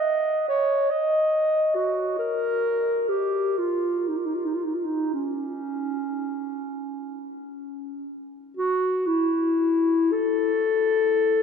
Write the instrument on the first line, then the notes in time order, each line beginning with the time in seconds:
clarinet
Already playing: D#5
0.49 C#5
0.91 D#5
1.75 F#4
2.19 A#4
3.09 G4
3.58 F4
4.08 D#4
4.17 F4
4.26 D#4
4.34 F4
4.45 D#4
4.55 F4
4.64 D#4
4.74 F4
4.85 D#4
5.14 C#4
8.57 F#4
9.07 E4
10.12 A4